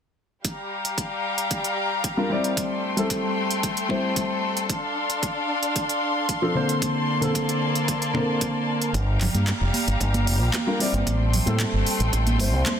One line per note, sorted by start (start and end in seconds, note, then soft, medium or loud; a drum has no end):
0.45 2.55 G3 medium
0.45 2.55 G4 medium
0.45 2.55 F5 medium
0.45 2.55 A#5 medium
0.45 kick loud
0.45 closed hi-hat medium
0.85 closed hi-hat soft
0.98 kick loud
0.98 closed hi-hat medium
1.38 closed hi-hat soft
1.51 kick loud
1.51 closed hi-hat medium
1.64 closed hi-hat soft
2.04 kick loud
2.04 closed hi-hat medium
2.17 2.27 G3 medium
2.17 2.27 D4 medium
2.17 2.28 F4 medium
2.17 2.28 A#4 medium
2.30 2.94 G3 medium
2.30 2.94 C4 medium
2.30 2.94 E4 medium
2.30 2.95 D5 loud
2.44 closed hi-hat soft
2.57 4.68 A3 medium
2.57 6.78 A4 medium
2.57 4.67 G5 medium
2.57 4.67 C6 medium
2.57 kick loud
2.57 closed hi-hat medium
2.97 3.87 G3 medium
2.97 3.87 C4 medium
2.97 3.87 E4 medium
2.97 3.87 A4 medium
2.97 closed hi-hat soft
3.10 kick loud
3.10 closed hi-hat medium
3.51 closed hi-hat soft
3.63 kick loud
3.63 closed hi-hat medium
3.77 closed hi-hat soft
3.89 4.68 G3 medium
3.89 4.68 C4 medium
3.89 4.68 E4 medium
3.89 4.69 C5 medium
3.89 kick medium
4.16 kick loud
4.16 closed hi-hat medium
4.57 closed hi-hat soft
4.69 6.80 D4 medium
4.69 6.80 F5 medium
4.69 8.91 C6 medium
4.69 kick loud
4.69 closed hi-hat medium
5.10 closed hi-hat soft
5.23 kick loud
5.23 closed hi-hat medium
5.63 closed hi-hat soft
5.76 kick loud
5.76 closed hi-hat medium
5.89 closed hi-hat soft
6.29 kick loud
6.29 closed hi-hat medium
6.42 6.52 F3 medium
6.42 6.52 C4 medium
6.42 6.52 D4 medium
6.42 6.53 A4 medium
6.55 7.18 D3 medium
6.55 7.19 A#3 medium
6.55 7.19 C4 medium
6.55 7.19 C5 medium
6.69 closed hi-hat soft
6.82 8.92 A#3 medium
6.82 8.92 D5 medium
6.82 8.92 A5 medium
6.82 kick loud
6.82 closed hi-hat medium
7.21 8.11 D3 medium
7.21 8.11 A#3 medium
7.21 8.12 C4 medium
7.21 8.12 A4 medium
7.21 closed hi-hat soft
7.35 kick loud
7.35 closed hi-hat medium
7.49 closed hi-hat soft
7.75 closed hi-hat soft
7.88 kick loud
7.88 closed hi-hat medium
8.02 closed hi-hat soft
8.14 8.92 D3 medium
8.14 8.93 A#3 medium
8.14 8.93 C4 medium
8.14 8.93 A#4 medium
8.14 kick medium
8.41 kick loud
8.41 closed hi-hat medium
8.82 closed hi-hat soft
8.94 9.26 G1 medium
8.94 11.05 G3 medium
8.94 11.05 G4 medium
8.94 11.05 F5 medium
8.94 11.05 A#5 medium
8.94 kick loud
8.94 closed hi-hat medium
9.21 clap medium
9.21 open hi-hat medium
9.21 low conga medium
9.34 9.51 G2 medium
9.34 closed hi-hat soft
9.34 high conga medium
9.47 kick loud
9.47 clap loud
9.47 closed hi-hat medium
9.61 9.69 F1 medium
9.74 open hi-hat medium
9.74 high conga medium
9.88 9.96 G1 medium
9.88 closed hi-hat soft
10.00 10.27 G1 medium
10.00 kick loud
10.00 closed hi-hat medium
10.14 closed hi-hat soft
10.14 high conga medium
10.27 10.40 F1 medium
10.27 open hi-hat medium
10.40 10.49 A#1 medium
10.53 kick loud
10.53 clap loud
10.53 closed hi-hat medium
10.53 high conga medium
10.67 10.77 G3 medium
10.67 10.77 D4 medium
10.67 10.77 F4 medium
10.67 10.77 A#4 loud
10.79 11.43 G3 medium
10.79 11.44 C4 medium
10.79 11.44 E4 medium
10.79 11.44 D5 loud
10.79 open hi-hat medium
10.94 11.02 G1 medium
10.94 closed hi-hat soft
10.94 high conga medium
11.07 11.39 A1 medium
11.07 12.80 A3 medium
11.07 12.80 A4 medium
11.07 12.80 G5 medium
11.07 12.80 C6 medium
11.07 kick loud
11.07 closed hi-hat medium
11.33 open hi-hat medium
11.33 low conga medium
11.46 11.63 A2 medium
11.46 12.36 G3 medium
11.46 12.36 C4 medium
11.46 12.37 E4 medium
11.46 12.37 A4 medium
11.46 closed hi-hat soft
11.46 high conga medium
11.60 kick loud
11.60 clap loud
11.60 closed hi-hat medium
11.73 11.82 G1 medium
11.86 open hi-hat medium
12.00 12.08 A1 medium
12.00 closed hi-hat soft
12.13 12.39 A1 medium
12.13 kick loud
12.13 closed hi-hat medium
12.27 closed hi-hat soft
12.27 high conga medium
12.39 12.53 G1 medium
12.39 12.80 G3 medium
12.39 12.80 C4 medium
12.39 12.80 E4 medium
12.39 12.80 C5 medium
12.39 kick medium
12.39 open hi-hat medium
12.53 12.61 C2 medium
12.66 kick loud
12.66 clap loud
12.66 closed hi-hat medium
12.66 high conga medium